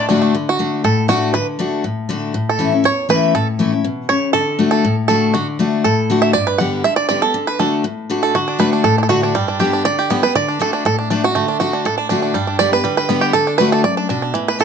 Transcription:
Already playing: A2 A3
0.09 D3 A3 D4 F#4
0.22 A3
0.34 D3
0.49 F#4
0.59 D3 A3 D4 F#4
0.84 A2 A4
1.08 D3 A3 D4 F#4
1.34 D3 B4
1.59 D3 A3 D4 F#4
1.84 A2
2.09 D3 A3 D4 F#4
2.34 A2
2.49 A4
2.59 E3 A3 C#4 E4
2.72 C#4 E4
2.84 E2 C#5
3.09 E3 A3 C#4 E4 B4
3.35 A2 A4
3.59 E3 A3 C#4 E4
3.72 C#4 E4
3.84 B2
4.09 C#3 C#5
4.33 D3 A4
4.59 D3 A3 D4 F#4
4.71 A4
4.85 A2
5.08 D3 A3 D4 F#4 A4
5.34 D3 F#4
5.59 D3 A3 D4 F#4
5.84 A2 A4
6.10 D3 A3 D4 F#4
6.22 E5
6.33 G2 D5
6.47 B4
6.58 D3 G3 B3 G4 F#5
6.84 D3 E5
6.96 D5
7.09 D3 G3 B3 G4 D5
7.22 B3 G4 A4
7.34 D3
7.47 B4
7.59 D3 A3 D4 F#4 A4
7.84 A2
8.10 D3 A3 D4 F#4
8.23 A4
8.35 D3 F#4
8.48 D4
8.59 D3 A3 D4 F#4 B4
8.73 D4
8.84 A2 A4
8.98 D4
9.03 A4
9.09 D3 A3 D4 F#4
9.23 D4
9.35 G2 G3
9.48 D4
9.59 D3 G3 B3 G4
9.73 D4
9.85 D3 D5
9.99 G4
10.10 D3 G3 B3 G4
10.23 B3 G4 B4
10.35 D3 D5
10.48 D4
10.59 D3 A3 D4 F#4 A4
10.73 D4
10.85 A2 A4
10.99 D4
11.10 D3 A3 D4 F#4
11.24 D4 F#4
11.35 D3 A3
11.48 D4
11.60 D3 A3 D4 F#4
11.73 D4
11.85 A2 A4
11.98 D4
12.09 D3 A3 D4 F#4
12.22 D4
12.34 G2 G3
12.47 D4
12.59 D3 G3 B3 G4 D5
12.72 B3 G4 B4
12.84 D3 G3
12.97 B4
13.09 D3 G3 B3 G4
13.21 G4
13.33 D3 A4
13.47 D4
13.58 D3 A3 D4 F#4 B4
13.72 A4
13.84 F#2 D5
13.97 D4
14.09 B2 D4
14.22 D4
14.34 A2 E3
14.48 B4
14.59 E3 A3 C#4 E4 A4

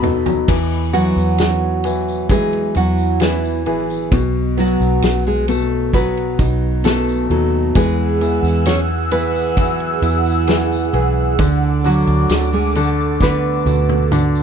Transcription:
Already playing: B2 F#3 A4 D#5 B5
0.02 D#2 B2 B3 D#4 A4, mid tom
0.26 F#3, floor tom, tambourine
0.48 E2 E3, kick, crash, tambourine
0.93 E3 F#3 B3 F#4, ride, tambourine
1.16 E2, tambourine
1.38 snare, ride, tambourine
1.84 E3, ride, tambourine
2.08 tambourine
2.29 E3 F#3 G#3 G#4, kick, ride, tambourine
2.53 ride
2.75 E2 F#3 E4 F#4, ride, tambourine
2.98 tambourine
3.20 E3 B3 E4, snare, ride, tambourine
3.44 tambourine
3.66 A1 E3 B3 E4 G#4, ride
3.90 tambourine
4.12 B1 B2, kick, ride, tambourine
4.57 F#3 B3 F#4, ride, tambourine
4.80 B1, tambourine
5.02 B1, snare, ride, tambourine
5.27 G#3 G#4
5.48 B2 A3 A4, ride, tambourine
5.93 F#3 B3 B4, kick, ride, tambourine
6.17 ride
6.39 B1 D#4, kick, ride, tambourine
6.84 B2 A3 B3 A4, snare, ride, tambourine
7.08 tambourine
7.30 D#2 F#3 B3 D#4 A4, ride
7.75 E2 E3 G#3 G#4 F#5 E6, kick, ride, tambourine
8.21 E3 B3, ride, tambourine
8.43 E2, tambourine
8.66 C#4 C#5, snare, ride, tambourine
9.11 E3 B3 B4, ride, tambourine
9.35 tambourine
9.57 E3 F#3, kick, ride, tambourine
9.80 ride
10.02 E2 E4, ride, tambourine
10.26 tambourine
10.47 E3 B3, snare, ride, tambourine
10.72 tambourine
10.93 B1 E3 B3 E4 G#4, ride
11.38 D2 D3 A4 D6, kick, ride, tambourine
11.84 D3 F#3 D4 F#4, ride, tambourine
12.07 D2, ride
12.29 D2, snare, ride, tambourine
12.53 G#3 G#4
12.75 D3 A3 A4, ride, tambourine
13.21 D3 A3 B3 B4, kick, snare, tambourine
13.66 D2 F#4, high tom, tambourine
13.89 high tom
14.11 D3 D4, mid tom, tambourine
14.35 tambourine

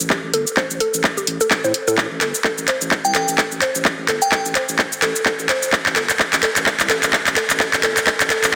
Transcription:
0.00 A1, shaker
0.10 G4, kick, clap
0.24 A1
0.34 G1 A4, closed hi-hat
0.47 shaker
0.57 C5, kick, clap
0.70 A1, shaker
0.80 A4, closed hi-hat
0.94 A1, shaker
1.04 kick, clap
1.17 G4, shaker
1.27 A1, closed hi-hat
1.41 A4, shaker
1.51 kick, clap
1.64 A2 C5, shaker
1.74 closed hi-hat
1.88 A2 A4, shaker
1.98 kick, clap
2.11 A1
2.21 G1 A4, clap, closed hi-hat
2.35 shaker
2.44 A4, kick, clap
2.58 A1, shaker
2.68 C5, clap, closed hi-hat
2.81 A1, shaker
2.91 kick, clap
3.05 C2 G5, shaker
3.15 A1 A4, clap, closed hi-hat
3.28 A1, shaker
3.38 A4, kick, clap
3.52 A1, shaker
3.62 C5, clap, closed hi-hat
3.75 A1, shaker
3.85 kick, clap
3.98 A1
4.08 G1 A4, clap, closed hi-hat
4.22 G5, shaker
4.32 A4 G5, kick, clap
4.45 A1, shaker
4.55 C5, clap, closed hi-hat
4.69 A1, shaker
4.79 kick, clap
4.92 shaker
5.02 A1 A4, clap, closed hi-hat
5.16 shaker
5.26 A4, kick, clap
5.39 A1, shaker
5.49 C5, clap, closed hi-hat
5.63 shaker
5.73 kick, clap
5.86 A1, clap
5.96 G1 A4, clap, closed hi-hat
6.10 clap, shaker
6.19 kick, clap
6.33 A1, clap, shaker
6.43 A4, clap, closed hi-hat
6.56 A1, clap, shaker
6.66 kick, clap
6.80 C2, clap, shaker
6.90 A1 A4, clap, closed hi-hat
7.03 A1, clap, shaker
7.13 kick, clap
7.27 A1, clap, shaker
7.36 A4, clap, closed hi-hat
7.50 A1, clap, shaker
7.60 A4, kick, clap
7.73 A1, clap, shaker
7.83 G1 A4, clap, closed hi-hat
7.97 clap, shaker
8.07 A4, kick, clap
8.20 A1, clap, shaker
8.30 A4, clap, closed hi-hat
8.44 A1, clap, shaker

